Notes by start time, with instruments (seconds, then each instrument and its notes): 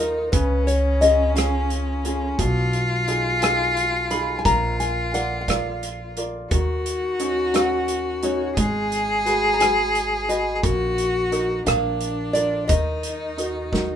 Already playing: upright bass D#2, upright piano D#3, cello D#4
0.00 upright piano D#4 F4 A#4, nylon-string guitar A#4
0.32 upright bass C#2, upright piano C#3, cello C#4, nylon-string guitar B4, kick, closed hi-hat
0.67 nylon-string guitar C#5, closed hi-hat
1.01 upright piano C#4 F4 G#4, nylon-string guitar D#5, closed hi-hat
1.34 upright piano C#4 F4 G#4, nylon-string guitar F5, cross-stick, closed hi-hat
1.70 closed hi-hat
2.04 upright piano C#4 F4 G#4, closed hi-hat
2.38 upright bass B1, upright piano B2, cello F4, kick, closed hi-hat
2.73 closed hi-hat
3.08 upright piano D#4 F4 G#4, closed hi-hat
3.42 upright piano D#4 F4 G#4, nylon-string guitar G#5, cross-stick, closed hi-hat
3.77 closed hi-hat
4.11 upright piano D#4 F4 G#4, nylon-string guitar B5, closed hi-hat
4.39 nylon-string guitar G#5
4.45 upright bass A#1, upright piano A#3, cello F4, nylon-string guitar A#5, kick, closed hi-hat
4.80 nylon-string guitar G#5, closed hi-hat
5.13 upright piano F4 A#4 D5, nylon-string guitar F#5, closed hi-hat
5.41 nylon-string guitar F#5
5.48 upright piano F4 A#4 D5, nylon-string guitar F5, kick, cross-stick, closed hi-hat
5.83 closed hi-hat
6.17 upright piano F4 A#4 D5, closed hi-hat
6.51 upright bass D#2, upright piano D#3, cello F#4, kick, closed hi-hat
6.86 closed hi-hat
7.19 upright piano C#4 D#4 F#4, closed hi-hat
7.53 upright piano C#4 D#4 F#4, nylon-string guitar F#5, cross-stick, closed hi-hat
7.88 closed hi-hat
8.23 upright piano C#4 D#4 F#4, nylon-string guitar C#5, closed hi-hat
8.56 upright bass G#1, upright piano G#3, cello G#4, kick, closed hi-hat
8.92 closed hi-hat
9.25 upright piano F#4 G#4 B4, closed hi-hat
9.54 nylon-string guitar A#5
9.60 upright piano F#4 G#4 B4, nylon-string guitar G#5, cross-stick, closed hi-hat
9.95 closed hi-hat
10.28 upright piano F#4 G#4 B4, nylon-string guitar D#5, closed hi-hat
10.56 cello G#4
10.63 upright bass A#1, upright piano A#3, cello F#4, kick, closed hi-hat
10.98 closed hi-hat
11.32 upright piano D#4 F#4 A#4, closed hi-hat
11.66 upright bass A#1, upright piano A#3, cello D4, nylon-string guitar F5, cross-stick, closed hi-hat
12.01 closed hi-hat
12.33 upright piano F4 A#4 D5, nylon-string guitar D5, closed hi-hat
12.68 upright bass D#2, upright piano D#3, cello D#4, nylon-string guitar D#5, kick, closed hi-hat
13.03 closed hi-hat
13.38 upright piano D#4 F#4 A#4, closed hi-hat
13.72 upright piano D#4 F#4 A#4, kick, snare